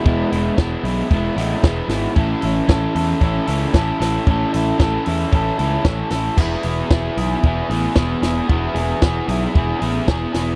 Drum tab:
CC |--------|--------|--------|x-------|
HH |-o-o-o-o|-o-o-o-o|-o-o-o-o|-o-o-o-o|
SD |--o--ooo|--o--ooo|--o---oo|--o---oo|
BD |o-o-o-o-|o-o-o-o-|o-o-o-o-|o-o-o-o-|

CC |--------|
HH |-o-o-o-o|
SD |--o---oo|
BD |o-o-o-o-|